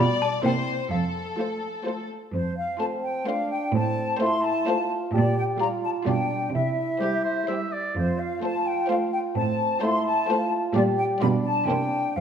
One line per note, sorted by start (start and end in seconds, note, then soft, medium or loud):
0.00 0.35 B2 medium
0.00 0.32 G3 soft
0.00 0.32 F4 medium
0.00 0.32 D5 medium
0.00 0.43 D5 medium
0.00 0.20 B5 medium
0.22 0.43 A5 medium
0.44 0.81 C3 medium
0.44 0.79 A#3 soft
0.44 0.79 E4 soft
0.44 0.79 C5 soft
0.44 0.91 C5 medium
0.44 0.89 G5 medium
0.91 1.29 F2 soft
0.91 2.07 A4 soft
0.91 1.82 F5 soft
1.38 1.74 A3 soft
1.38 1.74 F4 soft
1.38 1.74 C5 soft
1.85 2.21 A3 soft
1.85 2.21 F4 soft
1.85 2.21 C5 soft
2.33 2.70 F2 soft
2.33 2.55 C5 medium
2.57 2.80 F5 medium
2.79 3.15 A3 soft
2.79 3.29 C4 soft
2.79 3.15 F4 soft
2.79 3.15 C5 soft
2.79 2.85 A5 medium
3.03 3.26 G5 medium
3.27 3.62 A3 soft
3.27 3.76 D4 medium
3.27 3.63 F4 soft
3.27 3.62 C5 soft
3.27 3.51 F5 medium
3.51 3.74 G5 medium
3.74 4.11 A2 medium
3.74 4.20 C4 medium
3.74 4.20 A5 medium
4.20 4.56 A3 medium
4.20 4.69 E4 medium
4.20 4.56 F4 medium
4.20 4.55 C5 medium
4.20 4.44 C6 medium
4.43 4.90 A5 medium
4.67 5.02 A3 medium
4.67 5.13 F4 medium
4.67 5.02 F4 medium
4.67 5.02 C5 medium
5.14 5.51 A#2 medium
5.14 5.62 G4 medium
5.14 5.36 D5 medium
5.37 5.43 G5 medium
5.60 5.95 G3 soft
5.60 5.95 F4 soft
5.60 6.07 F4 medium
5.60 5.96 D5 soft
5.60 5.67 A#5 medium
5.84 5.90 A5 medium
6.06 6.44 B2 soft
6.06 6.42 G3 soft
6.06 6.54 D4 soft
6.06 6.42 F4 soft
6.06 6.43 D5 soft
6.06 6.54 G5 medium
6.53 6.91 C3 soft
6.53 7.70 E4 soft
6.53 7.70 E5 medium
7.01 7.36 G3 soft
7.01 7.36 G4 soft
7.01 7.23 G4 soft
7.01 7.37 C5 soft
7.24 7.48 C5 soft
7.48 7.84 G3 soft
7.48 7.84 G4 soft
7.48 7.84 C5 soft
7.48 7.74 E5 soft
7.73 7.96 D5 soft
7.96 8.33 F2 medium
7.96 9.32 F4 medium
7.96 8.18 C5 medium
8.19 8.43 F5 medium
8.42 8.77 A3 soft
8.42 8.78 F4 soft
8.42 8.78 C5 soft
8.42 8.66 A5 medium
8.66 8.90 G5 medium
8.89 9.24 A3 soft
8.89 9.24 F4 medium
8.89 9.24 C5 soft
8.89 8.95 F5 medium
9.13 9.19 G5 medium
9.36 9.73 A2 medium
9.36 9.82 C4 medium
9.36 9.82 A5 medium
9.82 10.17 A3 medium
9.82 10.31 E4 medium
9.82 10.18 F4 medium
9.82 10.17 C5 medium
9.82 10.06 C6 medium
10.06 10.52 A5 medium
10.29 10.64 A3 medium
10.29 10.64 F4 medium
10.29 10.75 F4 medium
10.29 10.64 C5 medium
10.76 11.12 A#2 medium
10.76 11.11 G3 medium
10.76 11.10 F4 soft
10.76 11.24 G4 medium
10.76 11.10 D5 medium
10.76 10.82 D5 medium
10.98 11.04 G5 medium
11.21 11.59 B2 medium
11.21 11.57 G3 soft
11.21 12.17 D4 medium
11.21 11.57 F4 medium
11.21 11.57 D5 medium
11.21 11.27 B5 medium
11.45 11.68 A5 medium
11.68 12.06 C3 medium
11.68 12.04 A#3 medium
11.68 12.05 E4 soft
11.68 12.05 C5 soft
11.68 12.16 G5 medium
12.16 12.21 F2 medium
12.16 12.21 C4 soft
12.16 12.21 F5 medium